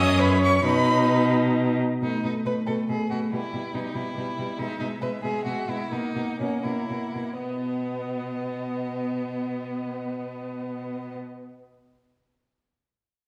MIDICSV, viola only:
0, 0, Header, 1, 2, 480
1, 0, Start_track
1, 0, Key_signature, 5, "major"
1, 0, Tempo, 453858
1, 682, Time_signature, 6, 3, 24, 8
1, 2130, Tempo, 428571
1, 5490, Tempo, 451467
1, 6450, Tempo, 487013
1, 7410, Tempo, 504626
1, 13484, End_track
2, 0, Start_track
2, 0, Title_t, "Viola"
2, 0, Program_c, 0, 41
2, 0, Note_on_c, 0, 61, 87
2, 667, Note_off_c, 0, 61, 0
2, 673, Note_on_c, 0, 63, 78
2, 1882, Note_off_c, 0, 63, 0
2, 2139, Note_on_c, 0, 57, 45
2, 2376, Note_off_c, 0, 57, 0
2, 2389, Note_on_c, 0, 57, 41
2, 2622, Note_off_c, 0, 57, 0
2, 2630, Note_on_c, 0, 57, 39
2, 2863, Note_off_c, 0, 57, 0
2, 2871, Note_on_c, 0, 57, 44
2, 3103, Note_off_c, 0, 57, 0
2, 3119, Note_on_c, 0, 57, 39
2, 3347, Note_off_c, 0, 57, 0
2, 3364, Note_on_c, 0, 57, 41
2, 3589, Note_off_c, 0, 57, 0
2, 3597, Note_on_c, 0, 55, 41
2, 3823, Note_off_c, 0, 55, 0
2, 3829, Note_on_c, 0, 55, 37
2, 4056, Note_off_c, 0, 55, 0
2, 4063, Note_on_c, 0, 55, 42
2, 4292, Note_off_c, 0, 55, 0
2, 4300, Note_on_c, 0, 55, 44
2, 4529, Note_off_c, 0, 55, 0
2, 4543, Note_on_c, 0, 55, 38
2, 4769, Note_off_c, 0, 55, 0
2, 4777, Note_on_c, 0, 55, 42
2, 5006, Note_off_c, 0, 55, 0
2, 5011, Note_on_c, 0, 56, 41
2, 5243, Note_off_c, 0, 56, 0
2, 5250, Note_on_c, 0, 56, 40
2, 5481, Note_off_c, 0, 56, 0
2, 5488, Note_on_c, 0, 56, 44
2, 5719, Note_off_c, 0, 56, 0
2, 5731, Note_on_c, 0, 56, 49
2, 5962, Note_off_c, 0, 56, 0
2, 5970, Note_on_c, 0, 56, 41
2, 6203, Note_off_c, 0, 56, 0
2, 6210, Note_on_c, 0, 56, 44
2, 6441, Note_off_c, 0, 56, 0
2, 6447, Note_on_c, 0, 58, 46
2, 6675, Note_off_c, 0, 58, 0
2, 6679, Note_on_c, 0, 58, 39
2, 6905, Note_off_c, 0, 58, 0
2, 6911, Note_on_c, 0, 58, 41
2, 7153, Note_off_c, 0, 58, 0
2, 7162, Note_on_c, 0, 58, 46
2, 7404, Note_off_c, 0, 58, 0
2, 7412, Note_on_c, 0, 58, 37
2, 7648, Note_off_c, 0, 58, 0
2, 7654, Note_on_c, 0, 58, 37
2, 7893, Note_off_c, 0, 58, 0
2, 7903, Note_on_c, 0, 59, 36
2, 11488, Note_off_c, 0, 59, 0
2, 13484, End_track
0, 0, End_of_file